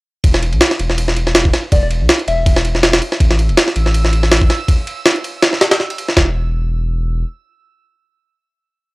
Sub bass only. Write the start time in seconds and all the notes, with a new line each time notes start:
0.24 E1
0.53 B1
0.79 E1
1.72 E1
2.01 B1
2.27 E1
3.20 A1
3.49 E1
3.76 A1
6.17 E1